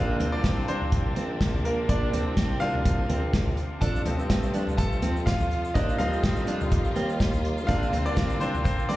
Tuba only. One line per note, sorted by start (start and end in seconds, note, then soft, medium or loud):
0.00 0.31 A#1 loud
0.33 1.18 C2 medium
1.17 1.85 A#1 loud
1.89 2.24 A#1 loud
2.27 3.06 C2 medium
3.10 3.55 A#1 loud
3.82 4.21 F2 loud
4.20 4.99 G2 loud
5.03 5.72 F2 loud
5.75 6.10 D#2 loud
6.13 6.92 F2 loud
6.96 7.70 D#2 loud
7.68 8.04 A#1 loud
8.07 8.63 C2 medium
8.89 8.96 A#1 loud